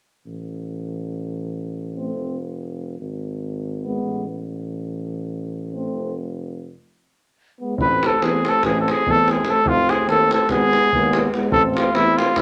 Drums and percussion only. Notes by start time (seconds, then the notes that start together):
7.78 davul low
8.03 davul high
8.22 davul high
8.33 davul high
8.45 davul high
8.54 davul high
8.63 davul high, davul low
8.75 davul high
8.88 davul high
8.97 davul high
9.07 davul low
9.28 davul high
9.37 davul high
9.45 davul high
9.56 davul high
9.66 davul low
9.89 davul high
10.09 davul high
10.20 davul high
10.31 davul high
10.41 davul high
10.49 davul high, davul low
10.61 davul high
10.73 davul high
10.83 davul high
10.92 davul low
11.13 davul high
11.23 davul high
11.34 davul high
11.43 davul high
11.52 davul low
11.77 davul high
11.95 davul high
12.07 davul high
12.18 davul high
12.28 davul high
12.36 davul high, davul low